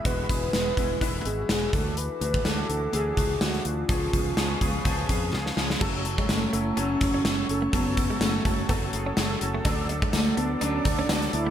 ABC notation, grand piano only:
X:1
M:4/4
L:1/8
Q:"Swing 16ths" 1/4=125
K:C#phr
V:1 name="Grand piano"
z8 | z8 | z4 z g ^e2 | [K:F#dor] z8 |
z8 | z8 |]
V:2 name="Grand piano"
[E,G,B,F] [E,G,B,G] [E,G,B,G] [E,G,B,E] [E,G,B,E] [E,G,B,F] [E,G,B,F] [E,A,DF]- | [E,A,DF] [E,A,DF] [E,A,DF] [E,A,DA] [E,A,DG] [E,A,DF] [E,A,DF] [E,A,DF] | [^E,B,CG] [E,B,CG] [E,B,CG] [E,B,CG] [E,B,CG] [E,B,CG] [E,B,CG] [E,B,CG] | [K:F#dor] [F,A,CA] [F,A,CA] [F,A,CA] [F,A,CE] [F,A,CA] [F,A,CA] [F,A,CA] [F,A,CA] |
[F,A,CA] [F,A,CA] [F,A,CA] [F,A,CA] [F,A,CA] [F,A,CG] [F,A,CA] [F,A,CA] | [F,A,=DA] [F,A,DA] [F,A,DA] [F,A,DA] [F,A,DA] [F,A,DA] [F,A,DA] [F,A,DA] |]